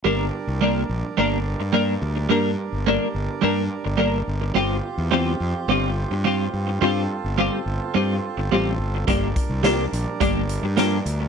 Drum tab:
HH |--------|--------|--------|--------|
SD |--------|--------|--------|--------|
BD |--------|--------|--------|--------|

HH |xxxxxxxx|
SD |--o---o-|
BD |oo--o---|